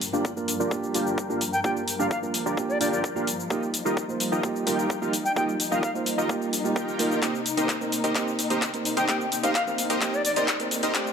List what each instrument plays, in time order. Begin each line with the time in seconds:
Already playing: string section G2 F3 A#4
0.01 open hi-hat, shaker
0.13 grand piano A#3 D4 F4 G4, supersaw synth D4 F4 G4 A#4 D5, shaker
0.25 kick, shaker
0.36 grand piano A#3 D4 F4 A#4, shaker
0.48 open hi-hat, shaker
0.60 supersaw synth D4 F4 G4 A#4 D5, shaker
0.71 grand piano A#3 D4 F4 G4, kick, shaker
0.83 shaker
0.94 grand piano A#3 D4 F4 G4, supersaw synth D4 F4 G4 A#4 G5, open hi-hat, shaker
1.07 shaker
1.18 kick, shaker
1.29 grand piano A#3 D4 F4 G4, supersaw synth D4 F4 G4 A#4 F5, shaker
1.41 open hi-hat, shaker
1.53 flute G5, shaker
1.64 grand piano A#3 D4 F4 G4, supersaw synth D4 F4 G4 A#4 D5, flute G5, kick, shaker
1.77 shaker
1.88 open hi-hat, shaker
1.99 grand piano A#3 D4 F4 G4, supersaw synth D4 F4 G4 A#4 D5, flute F5, shaker
2.11 flute F5, kick, shaker
2.22 grand piano A#3 D4 F4 A#4, shaker
2.34 open hi-hat, shaker
2.46 supersaw synth D4 F4 G4 A#4 D5, shaker
2.57 grand piano A#3 D4 F4 G4, kick, shaker
2.69 flute D5, shaker
2.80 grand piano A#3 D4 F4 G4, supersaw synth D4 F4 G4 A#4 G5, flute D5, open hi-hat, shaker
2.92 flute D5, shaker
3.04 kick, shaker
3.15 grand piano A#3 D4 F4 G4, supersaw synth D4 F4 G4 A#4 F5, shaker
3.27 open hi-hat, shaker
3.40 shaker
3.50 string section G3 D#4, grand piano A#3 D#4 F4 G4, supersaw synth D#4 F4 G4 A#4 D#5, kick, shaker
3.63 shaker
3.74 open hi-hat, shaker
3.85 grand piano A#3 D#4 F4 G4, supersaw synth D#4 F4 G4 A#4 D#5, shaker
3.97 kick, shaker
4.08 grand piano A#3 D#4 F4 C5, shaker
4.20 open hi-hat, shaker
4.32 supersaw synth D#4 F4 G4 A#4 D#5, shaker
4.43 grand piano A#3 D#4 F4 G4, kick, shaker
4.56 shaker
4.66 grand piano A#3 D#4 F4 G4, supersaw synth D#4 F4 G4 A#4 G5, open hi-hat, shaker
4.79 shaker
4.90 kick, shaker
5.01 grand piano A#3 D#4 F4 G4, supersaw synth D#4 F4 G4 A#4 F5, shaker
5.13 open hi-hat, shaker
5.25 flute G5, shaker
5.36 grand piano A#3 D#4 F4 G4, supersaw synth D#4 F4 G4 A#4 D#5, flute G5, kick, shaker
5.49 shaker
5.60 open hi-hat, shaker
5.71 grand piano A#3 D#4 F4 G4, supersaw synth D#4 F4 G4 A#4 D#5, flute F5, shaker
5.83 flute F5, kick, shaker
5.94 grand piano A#3 D#4 F4 C5, shaker
6.06 open hi-hat, shaker
6.18 supersaw synth D#4 F4 G4 A#4 D#5, shaker
6.29 grand piano A#3 D#4 F4 G4, kick, shaker
6.42 shaker
6.53 open hi-hat, shaker
6.64 grand piano A#3 D#4 F4 G4, shaker
6.76 supersaw synth D#4 F4 G4 A#4 G5, kick, shaker
6.88 shaker
6.99 grand piano A#3 D#4 F4 A#4, open hi-hat, shaker
7.12 shaker
7.22 string section C3 A#3, grand piano A#3 C4 D#4 G4, supersaw synth D#4 A#4 D#5, kick, clap, closed hi-hat, riser, shaker
7.35 shaker
7.46 open hi-hat, shaker
7.57 grand piano A#3 C4 D#4 G4, supersaw synth D#4 G4 A#4 C5 D#5, closed hi-hat, shaker
7.69 kick, clap, closed hi-hat, shaker
7.80 grand piano A#3 C4 D#4 A#4, shaker
7.92 open hi-hat, shaker
8.04 supersaw synth D#4 G4 A#4 C5 D#5, closed hi-hat, shaker
8.15 grand piano A#3 C4 D#4 G4, supersaw synth D#4 G4 A#4 C5 D#5, kick, clap, closed hi-hat, shaker
8.28 shaker
8.39 open hi-hat, shaker
8.50 grand piano A#3 C4 D#4 G4, supersaw synth D#4 G4 A#4 C5 D#5, closed hi-hat, shaker
8.62 kick, clap, closed hi-hat, shaker
8.73 grand piano A#3 C4 D#4 A#4, closed hi-hat, shaker
8.85 open hi-hat, shaker
8.97 supersaw synth D#4 G4 A#4 C5 D#5, flute G5, closed hi-hat, shaker
9.08 grand piano A#3 C4 D#4 G4, supersaw synth D#4 G4 A#4 D#5, flute G5, kick, clap, closed hi-hat, shaker
9.21 shaker
9.32 open hi-hat, shaker
9.43 grand piano A#3 C4 D#4 G4, supersaw synth D#4 G4 A#4 C5 D#5, flute F5, closed hi-hat, shaker
9.55 flute F5, kick, clap, closed hi-hat, shaker
9.66 grand piano A#3 C4 D#4 A#4, shaker
9.78 open hi-hat, shaker
9.90 supersaw synth D#4 G4 A#4 C5 D#5, closed hi-hat, shaker
10.01 grand piano A#3 C4 D#4 G4, supersaw synth D#4 G4 D#5, kick, clap, closed hi-hat, shaker
10.13 flute D5, shaker
10.25 flute D5, open hi-hat, shaker
10.36 grand piano A#3 C4 D#4 G4, supersaw synth D#4 G4 A#4 C5 D#5, flute D5, closed hi-hat, shaker
10.48 kick, clap, closed hi-hat, shaker
10.59 grand piano A#3 C4 D#4 A#4, closed hi-hat, shaker
10.71 open hi-hat, shaker
10.83 supersaw synth D#4 G4 A#4 C5 D#5, closed hi-hat, shaker
10.94 string section D2 F4, grand piano A3 C4 D4 G4, supersaw synth D4 G4 A4 C5 D5, kick, clap, closed hi-hat, shaker
11.07 shaker